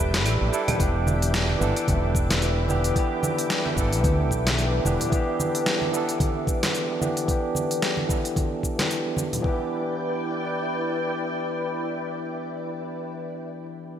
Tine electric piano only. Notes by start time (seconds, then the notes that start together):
Already playing: G3 D4 E4 A4 B4
0.52 G3 D4 E4 A4
0.78 E3 B3 D4
0.83 G4
1.58 E3 B3 D4
1.64 A4
2.68 E3 B3 D4 G4
2.94 E3 B3 D4
2.99 G4
3.75 E3 B3 D4
3.80 A4
4.85 E3 B3 D4 G4
5.10 E3 B3 D4
5.15 G4
5.91 E3 B3 D4
5.96 A4
7.00 E3 B3 D4 G4
7.26 E3 B3 D4
7.31 G4
8.07 E3 B3 D4
8.12 A4
8.76 E3 B3 D4
8.81 G4
9.40 E3 B3
9.46 D4 G4